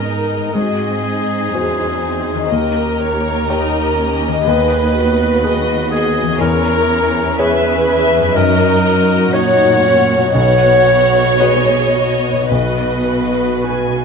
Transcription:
0.00 0.36 G#2 soft
0.00 0.51 G#2 soft
0.00 0.51 B3 soft
0.00 0.52 B3 soft
0.00 0.50 G#4 soft
0.00 0.51 G#4 soft
0.00 2.36 G#4 soft
0.00 0.55 A#4 medium
0.00 0.56 A#4 soft
0.00 0.54 D#5 soft
0.04 0.55 D#4 soft
0.37 2.48 G#2 soft
0.42 2.50 C4 soft
0.46 2.42 D#4 soft
0.51 1.53 C4 soft
0.51 2.54 F#4 soft
0.51 1.04 F#4 soft
0.51 2.52 G#4 medium
0.55 1.52 G#2 soft
0.55 1.51 G#2 soft
0.55 2.53 G#4 medium
0.55 1.53 D#5 soft
1.04 2.52 D#4 soft
1.54 2.53 E2 soft
1.54 2.04 C#4 soft
1.54 2.49 F#4 soft
1.54 2.53 C5 soft
1.54 2.49 C5 soft
2.04 2.52 C4 soft
2.34 4.26 D#3 soft
2.38 4.44 C#4 soft
2.43 4.36 D#4 soft
2.48 4.42 D#2 soft
2.48 3.47 A#3 soft
2.48 4.48 G4 soft
2.48 3.47 G4 soft
2.48 4.46 A#4 medium
2.48 3.00 D#5 soft
2.52 4.46 D#2 soft
2.52 4.16 A#4 medium
3.00 3.49 C#5 soft
3.49 3.96 D#4 medium
3.49 4.44 G4 soft
3.49 4.43 G4 soft
3.49 4.43 C#5 soft
3.49 5.42 D#5 soft
3.97 4.45 C#4 soft
4.28 6.36 D#3 soft
4.33 6.38 B3 soft
4.37 6.40 D#4 soft
4.41 6.30 G#4 soft
4.41 5.87 B4 medium
4.46 6.37 D#2 soft
4.46 6.38 D#2 medium
4.46 6.37 B3 medium
4.46 4.95 G#4 medium
4.46 5.89 B4 medium
4.96 6.41 F#4 medium
5.43 6.37 G#4 soft
5.43 6.37 B4 soft
5.43 5.91 D#5 medium
5.91 6.39 G#4 medium
5.91 6.41 G#4 medium
5.91 6.40 D#5 medium
6.22 8.30 E3 soft
6.27 8.21 C#4 soft
6.31 8.35 G#4 soft
6.40 8.32 E2 medium
6.40 8.32 E2 soft
6.40 6.89 C#4 medium
6.40 7.37 E4 medium
6.40 7.38 A#4 medium
6.40 7.36 A#4 medium
6.40 7.38 C#5 medium
6.90 8.33 C#4 medium
7.38 8.36 G#4 medium
7.38 8.32 G#4 soft
7.38 8.38 B4 medium
7.38 8.36 B4 medium
7.38 8.32 C#5 soft
7.38 7.86 E5 medium
7.88 8.35 E5 medium
8.18 10.29 F#2 soft
8.22 10.31 C#4 soft
8.27 10.24 D#4 soft
8.31 10.29 F#4 soft
8.35 9.34 F#2 medium
8.35 10.31 F#2 medium
8.35 9.33 D#4 medium
8.35 8.84 F#4 medium
8.35 9.35 A#4 medium
8.35 9.34 A#4 medium
8.35 9.35 D#5 medium
8.87 10.32 F#4 medium
9.33 10.32 A#2 medium
9.33 9.83 D#4 medium
9.33 10.31 F#4 soft
9.33 10.34 C#5 medium
9.33 10.33 C#5 medium
9.33 10.31 C#5 soft
9.33 10.34 F#5 medium
9.84 10.35 C#4 medium
10.17 12.32 B2 soft
10.21 12.36 B3 soft
10.25 12.40 D#4 soft
10.30 12.45 F#4 soft
10.34 12.47 B1 soft
10.34 12.47 B2 medium
10.34 12.48 B3 medium
10.34 11.38 F#4 medium
10.34 12.16 C#5 loud
10.34 12.48 C#5 medium
10.34 11.38 F#5 medium
11.39 12.47 F#4 soft
11.39 11.95 G#4 medium
11.39 12.47 B4 soft
11.39 12.51 D#5 soft
11.95 12.50 F#4 soft
12.33 14.05 B2 soft
12.37 14.05 B3 soft
12.41 14.05 D#4 soft
12.46 14.05 F#4 soft
12.50 14.05 B1 soft
12.50 14.05 B2 soft
12.50 14.05 B3 soft
12.50 14.05 F#4 soft
12.50 14.05 B4 medium
12.50 13.51 D#5 soft
13.64 14.05 F#4 soft
13.64 14.05 B4 soft
13.64 14.05 G#5 soft

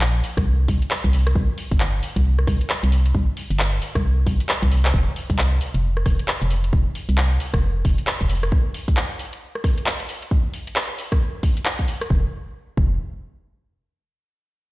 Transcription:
0.00 0.22 A#1 medium
0.00 clap loud
0.24 open hi-hat loud
0.37 0.67 C2 medium
0.37 kick loud
0.37 cross-stick medium
0.37 closed hi-hat medium
0.68 0.81 C2 medium
0.68 kick medium
0.68 open hi-hat loud
0.82 closed hi-hat medium
0.91 clap loud
1.04 1.34 C2 medium
1.04 kick medium
1.04 closed hi-hat medium
1.13 open hi-hat loud
1.27 cross-stick medium
1.27 closed hi-hat medium
1.35 1.48 C2 loud
1.35 kick loud
1.58 open hi-hat loud
1.71 2.01 G1 medium
1.71 kick loud
1.71 closed hi-hat medium
1.80 clap loud
2.03 open hi-hat loud
2.16 2.46 C2 medium
2.16 kick medium
2.16 closed hi-hat medium
2.39 cross-stick medium
2.47 2.60 C2 loud
2.47 kick medium
2.47 cross-stick soft
2.47 open hi-hat loud
2.61 closed hi-hat medium
2.70 clap loud
2.83 3.13 C2 medium
2.83 closed hi-hat medium
2.92 open hi-hat loud
3.06 closed hi-hat medium
3.15 3.27 C2 loud
3.15 kick loud
3.37 open hi-hat loud
3.50 3.80 G1 medium
3.50 closed hi-hat medium
3.59 clap loud
3.82 open hi-hat loud
3.95 4.25 C2 medium
3.95 kick loud
3.95 cross-stick medium
3.95 closed hi-hat medium
4.27 4.39 C2 loud
4.27 kick medium
4.27 open hi-hat loud
4.40 closed hi-hat medium
4.49 clap loud
4.63 4.92 C2 loud
4.63 kick medium
4.63 closed hi-hat medium
4.71 open hi-hat loud
4.85 clap medium
4.85 closed hi-hat medium
4.94 5.06 F1 loud
4.94 kick loud
5.16 open hi-hat loud
5.30 5.60 C2 medium
5.30 kick loud
5.30 closed hi-hat medium
5.38 clap loud
5.61 open hi-hat loud
5.74 6.04 F1 medium
5.74 closed hi-hat medium
5.97 cross-stick medium
6.06 6.18 F1 medium
6.06 kick loud
6.06 cross-stick medium
6.06 open hi-hat loud
6.19 closed hi-hat medium
6.28 clap loud
6.42 6.71 F1 medium
6.42 closed hi-hat medium
6.50 open hi-hat loud
6.64 closed hi-hat medium
6.73 6.85 F1 loud
6.73 kick loud
6.95 open hi-hat loud
7.09 7.39 C2 medium
7.09 closed hi-hat medium
7.18 clap loud
7.40 open hi-hat loud
7.54 7.83 F1 medium
7.54 kick loud
7.54 cross-stick medium
7.54 closed hi-hat medium
7.85 7.97 F1 medium
7.85 kick loud
7.85 open hi-hat loud
7.98 closed hi-hat medium
8.07 clap loud
8.21 8.51 F1 medium
8.21 kick medium
8.21 closed hi-hat medium
8.29 open hi-hat loud
8.43 cross-stick medium
8.43 closed hi-hat medium
8.52 kick loud
8.74 open hi-hat loud
8.88 kick loud
8.88 closed hi-hat medium
8.97 clap loud
9.19 open hi-hat loud
9.33 closed hi-hat medium
9.55 cross-stick medium
9.64 kick loud
9.64 cross-stick medium
9.64 open hi-hat loud
9.78 closed hi-hat medium
9.86 clap loud
10.00 closed hi-hat medium
10.09 open hi-hat loud
10.22 closed hi-hat medium
10.31 kick loud
10.54 open hi-hat medium
10.67 closed hi-hat medium
10.76 clap loud
10.98 open hi-hat medium
11.12 kick loud
11.12 cross-stick medium
11.12 closed hi-hat medium
11.43 kick loud
11.43 open hi-hat loud
11.57 closed hi-hat medium
11.65 clap loud
11.79 kick medium
11.79 closed hi-hat medium
11.88 open hi-hat medium
12.01 cross-stick medium
12.01 closed hi-hat medium
12.10 12.25 F1 loud
12.10 kick loud
12.77 12.98 F1 loud
12.77 kick loud

